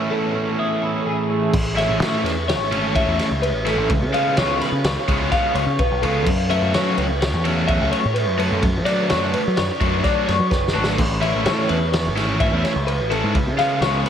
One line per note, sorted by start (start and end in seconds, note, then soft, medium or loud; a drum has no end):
0.00 0.12 A2 medium
0.00 1.53 A2 medium
0.00 1.52 E3 medium
0.00 1.29 A3 medium
0.00 1.52 A3 medium
0.00 0.34 C#4 medium
0.00 1.52 C#4 medium
0.00 0.82 E4 medium
0.00 1.52 E4 medium
0.00 0.10 B4 medium
0.10 1.06 E2 medium
0.10 0.58 A4 medium
0.35 1.51 C#4 medium
0.59 0.83 E4 medium
0.59 1.51 G#4 medium
0.82 1.52 E4 medium
0.82 1.06 A4 medium
1.06 1.54 G#4 medium
1.30 1.51 A3 medium
1.53 1.87 A1 loud
1.53 kick loud
1.53 crash loud
1.76 1.99 E3 medium
1.76 1.99 A3 medium
1.76 1.99 C#4 medium
1.76 1.99 E4 medium
1.76 2.01 E5 medium
1.76 snare soft
1.76 ride medium
1.89 2.00 A1 loud
2.00 2.23 A2 medium
2.00 2.31 E3 medium
2.00 2.31 A3 medium
2.00 2.31 C#4 medium
2.00 2.32 E4 medium
2.00 2.25 C#5 medium
2.00 snare loud
2.00 ride loud
2.24 2.60 E2 loud
2.24 2.48 B4 medium
2.24 snare soft
2.24 ride medium
2.48 2.95 C#5 medium
2.48 snare loud
2.48 ride loud
2.60 3.05 G#1 medium
2.71 2.93 E3 medium
2.71 2.93 A3 medium
2.71 2.94 C#4 medium
2.71 2.94 E4 medium
2.71 ride medium
2.94 3.25 E3 medium
2.94 3.26 A3 medium
2.94 3.26 C#4 medium
2.94 3.26 E4 medium
2.94 3.19 E5 medium
2.94 kick loud
2.94 ride loud
3.07 3.18 E2 medium
3.19 3.43 C#5 medium
3.19 snare soft
3.19 ride medium
3.31 3.53 C#2 medium
3.42 3.66 B4 medium
3.42 ride loud
3.53 3.76 A1 medium
3.65 3.90 E3 medium
3.65 3.90 A3 medium
3.65 3.90 C#4 loud
3.65 3.89 E4 loud
3.65 3.90 A4 medium
3.65 snare soft
3.65 ride medium
3.77 3.89 A1 loud
3.90 4.04 C#2 loud
3.90 kick loud
3.90 ride loud
4.02 4.39 C#3 medium
4.13 4.35 C#3 medium
4.13 4.36 G#3 medium
4.13 4.36 B3 loud
4.13 4.37 F4 loud
4.13 4.37 F5 medium
4.13 ride medium
4.37 4.60 C#2 loud
4.37 4.68 C#3 medium
4.37 4.68 G#3 medium
4.37 4.68 B3 medium
4.37 4.68 F4 medium
4.37 4.61 C#5 medium
4.37 snare loud
4.37 ride loud
4.61 4.85 B4 medium
4.61 snare soft
4.61 ride medium
4.72 4.84 C#3 medium
4.84 4.96 C#2 medium
4.84 5.31 C#5 medium
4.84 snare loud
4.84 ride loud
5.08 5.31 C#2 loud
5.08 5.31 C#3 medium
5.08 5.31 G#3 medium
5.08 5.32 B3 medium
5.08 5.32 F4 medium
5.08 kick medium
5.08 ride medium
5.32 5.63 C#3 medium
5.32 5.63 G#3 medium
5.32 5.63 B3 medium
5.32 5.63 F4 medium
5.32 5.54 F5 medium
5.32 kick loud
5.32 snare soft
5.32 ride loud
5.55 5.66 C#2 loud
5.55 5.79 C#5 medium
5.55 ride medium
5.66 5.78 C#3 loud
5.79 5.90 B1 medium
5.79 6.02 B4 medium
5.79 kick loud
5.79 ride loud
5.92 6.03 B1 loud
6.02 6.27 C#2 loud
6.02 6.27 C#3 medium
6.02 6.27 G#3 loud
6.02 6.27 B3 medium
6.02 6.27 F4 loud
6.02 6.26 A4 medium
6.02 ride medium
6.26 6.60 F#2 loud
6.26 kick loud
6.26 crash loud
6.50 6.73 F#3 medium
6.50 6.73 A3 medium
6.50 6.73 C#4 loud
6.50 6.73 F#4 loud
6.50 6.74 E5 medium
6.50 ride medium
6.62 6.76 F#2 loud
6.74 7.04 F#3 medium
6.74 6.97 F#3 loud
6.74 7.05 A3 medium
6.74 7.05 C#4 medium
6.74 7.05 F#4 medium
6.74 6.98 C#5 medium
6.74 snare loud
6.74 ride loud
6.98 7.34 C#2 loud
6.98 7.21 B4 medium
6.98 ride medium
7.21 7.67 C#5 medium
7.21 snare loud
7.21 ride loud
7.34 7.78 E2 medium
7.45 7.66 F#3 medium
7.45 7.67 A3 medium
7.45 7.67 C#4 loud
7.45 7.68 F#4 medium
7.45 ride medium
7.67 7.99 F#3 medium
7.67 7.99 A3 medium
7.67 7.99 C#4 medium
7.67 7.99 F#4 medium
7.67 7.91 E5 medium
7.67 kick loud
7.67 ride loud
7.81 7.92 C#2 loud
7.91 8.15 C#5 medium
7.91 ride medium
8.05 8.27 A2 medium
8.14 8.38 B4 medium
8.14 ride loud
8.27 8.50 F#2 medium
8.38 8.63 F#3 medium
8.38 8.62 A3 medium
8.38 8.62 C#4 medium
8.38 8.62 F#4 loud
8.38 8.62 A4 medium
8.38 ride medium
8.52 8.63 F#2 loud
8.63 8.79 F#2 loud
8.63 kick loud
8.63 ride loud
8.77 9.13 F#3 medium
8.85 9.08 F#3 medium
8.85 9.08 A3 medium
8.85 9.08 D4 medium
8.85 9.08 F#4 loud
8.85 9.09 D5 medium
8.85 snare soft
8.85 ride medium
9.09 9.33 F#2 loud
9.09 9.40 F#3 medium
9.09 9.40 A3 medium
9.09 9.40 D4 medium
9.09 9.40 F#4 medium
9.09 9.33 C#5 medium
9.09 snare loud
9.09 ride loud
9.33 9.57 B4 medium
9.33 ride medium
9.47 9.58 F#3 loud
9.56 9.69 F#2 medium
9.56 10.03 C#5 medium
9.56 snare loud
9.56 ride loud
9.80 10.03 F#2 medium
9.80 10.02 F#3 medium
9.80 10.03 A3 medium
9.80 10.03 D4 medium
9.80 10.03 F#4 medium
9.80 kick medium
9.80 ride medium
10.04 10.35 F#3 medium
10.04 10.35 A3 medium
10.04 10.35 D4 medium
10.04 10.35 F#4 medium
10.04 10.26 D5 medium
10.04 kick loud
10.04 snare soft
10.04 ride loud
10.26 10.39 F#2 medium
10.26 10.51 C#5 medium
10.26 snare soft
10.26 ride medium
10.40 10.50 F#3 medium
10.51 10.73 F#1 medium
10.51 10.74 B4 medium
10.51 kick loud
10.51 snare medium
10.68 snare medium
10.74 10.97 G#1 medium
10.74 10.99 F#3 medium
10.74 10.99 A3 medium
10.74 10.99 D4 medium
10.74 10.98 F#4 medium
10.74 10.98 A4 medium
10.84 snare loud
10.98 11.32 A1 loud
10.98 kick loud
10.98 crash loud
10.98 splash medium
11.21 11.43 E3 medium
11.21 11.43 A3 medium
11.21 11.44 C#4 loud
11.21 11.44 E4 loud
11.21 11.45 E5 medium
11.21 ride medium
11.34 11.47 A1 medium
11.44 11.68 A2 loud
11.44 11.76 E3 medium
11.44 11.76 A3 medium
11.44 11.76 C#4 medium
11.44 11.76 E4 medium
11.44 11.68 C#5 medium
11.44 snare loud
11.44 ride loud
11.68 12.08 E2 loud
11.68 11.92 B4 medium
11.68 ride medium
11.92 12.40 C#5 medium
11.92 snare loud
11.92 ride loud
12.07 12.51 G#1 medium
12.16 12.38 E3 medium
12.16 12.39 A3 medium
12.16 12.39 C#4 medium
12.16 12.40 E4 loud
12.16 snare soft
12.16 ride medium
12.40 12.71 E3 medium
12.40 12.71 A3 medium
12.40 12.71 C#4 medium
12.40 12.71 E4 medium
12.40 12.64 E5 medium
12.40 kick loud
12.40 ride loud
12.53 12.64 E2 loud
12.64 12.87 C#5 medium
12.64 snare soft
12.64 ride medium
12.76 13.01 C#2 medium
12.87 13.11 B4 medium
12.87 ride loud
13.01 13.23 A1 medium
13.10 13.35 E3 medium
13.10 13.35 A3 medium
13.10 13.35 C#4 medium
13.10 13.34 E4 loud
13.10 13.35 A4 medium
13.10 ride medium
13.24 13.34 G#2 loud
13.35 13.48 C#2 loud
13.35 kick loud
13.35 ride loud
13.47 13.82 C#3 medium
13.58 13.81 C#3 medium
13.58 13.82 G#3 medium
13.58 13.82 B3 medium
13.58 13.82 F4 medium
13.58 13.81 F5 medium
13.58 snare soft
13.58 ride medium
13.81 14.04 C#2 loud
13.81 14.09 C#3 medium
13.81 14.09 G#3 medium
13.81 14.09 B3 medium
13.81 14.09 F4 medium
13.81 14.06 C#5 medium
13.81 snare loud
13.81 ride loud
14.06 14.09 B4 medium
14.06 ride medium